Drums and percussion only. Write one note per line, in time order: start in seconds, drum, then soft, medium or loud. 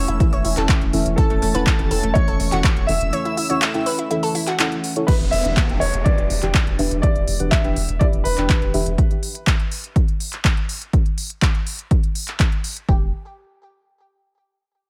0.08 closed hi-hat medium
0.20 kick loud
0.20 closed hi-hat medium
0.33 closed hi-hat soft
0.45 open hi-hat loud
0.57 clap soft
0.57 closed hi-hat medium
0.69 kick loud
0.69 clap loud
0.69 closed hi-hat medium
0.81 closed hi-hat soft
0.93 open hi-hat loud
1.06 closed hi-hat medium
1.18 kick loud
1.18 closed hi-hat medium
1.30 closed hi-hat soft
1.42 open hi-hat loud
1.55 closed hi-hat medium
1.67 kick loud
1.67 clap loud
1.67 closed hi-hat medium
1.79 closed hi-hat soft
1.91 open hi-hat loud
2.03 closed hi-hat medium
2.15 kick loud
2.15 closed hi-hat medium
2.28 closed hi-hat soft
2.40 open hi-hat loud
2.52 clap soft
2.52 closed hi-hat medium
2.64 kick loud
2.64 clap loud
2.64 closed hi-hat medium
2.77 closed hi-hat soft
2.89 open hi-hat loud
3.01 closed hi-hat medium
3.13 closed hi-hat medium
3.25 closed hi-hat soft
3.37 open hi-hat loud
3.50 closed hi-hat medium
3.62 clap loud
3.62 closed hi-hat medium
3.74 closed hi-hat soft
3.86 open hi-hat loud
3.99 closed hi-hat medium
4.11 closed hi-hat medium
4.23 open hi-hat medium
4.35 open hi-hat loud
4.47 clap soft
4.47 closed hi-hat medium
4.59 clap loud
4.59 closed hi-hat medium
4.72 closed hi-hat soft
4.84 open hi-hat loud
4.96 closed hi-hat medium
5.08 kick loud
5.08 closed hi-hat medium
5.08 crash loud
5.20 closed hi-hat soft
5.32 open hi-hat loud
5.45 closed hi-hat medium
5.57 kick loud
5.57 clap loud
5.57 closed hi-hat medium
5.69 closed hi-hat soft
5.81 open hi-hat loud
5.94 closed hi-hat medium
6.06 kick loud
6.06 closed hi-hat medium
6.18 closed hi-hat soft
6.30 open hi-hat loud
6.42 clap soft
6.42 closed hi-hat medium
6.54 kick loud
6.54 clap loud
6.54 closed hi-hat medium
6.67 closed hi-hat soft
6.79 open hi-hat loud
6.91 closed hi-hat medium
7.03 kick loud
7.03 closed hi-hat medium
7.16 closed hi-hat soft
7.28 open hi-hat loud
7.40 closed hi-hat medium
7.52 kick loud
7.52 clap loud
7.52 closed hi-hat medium
7.64 closed hi-hat soft
7.76 open hi-hat loud
7.89 closed hi-hat medium
8.01 kick loud
8.01 closed hi-hat medium
8.13 closed hi-hat soft
8.25 open hi-hat loud
8.38 clap soft
8.38 closed hi-hat medium
8.49 kick loud
8.49 clap loud
8.49 closed hi-hat medium
8.62 closed hi-hat soft
8.74 open hi-hat loud
8.86 closed hi-hat medium
8.98 kick loud
8.98 closed hi-hat medium
9.11 closed hi-hat soft
9.23 open hi-hat loud
9.35 closed hi-hat medium
9.47 kick loud
9.47 clap loud
9.47 closed hi-hat soft
9.60 closed hi-hat soft
9.71 open hi-hat loud
9.84 closed hi-hat soft
9.96 kick loud
9.96 closed hi-hat medium
10.08 closed hi-hat soft
10.20 open hi-hat loud
10.33 clap soft
10.33 closed hi-hat soft
10.45 kick loud
10.45 clap loud
10.45 closed hi-hat soft
10.57 closed hi-hat soft
10.69 open hi-hat loud
10.82 closed hi-hat soft
10.93 kick loud
10.93 closed hi-hat soft
11.06 closed hi-hat soft
11.18 open hi-hat loud
11.30 closed hi-hat medium
11.42 kick loud
11.42 clap loud
11.42 closed hi-hat soft
11.55 closed hi-hat soft
11.67 open hi-hat loud
11.79 closed hi-hat medium
11.91 kick loud
11.91 closed hi-hat soft
12.03 closed hi-hat soft
12.15 open hi-hat loud
12.28 clap soft
12.28 closed hi-hat soft
12.40 kick loud
12.40 clap loud
12.40 closed hi-hat soft
12.52 closed hi-hat soft
12.64 open hi-hat loud
12.77 closed hi-hat soft
12.89 kick loud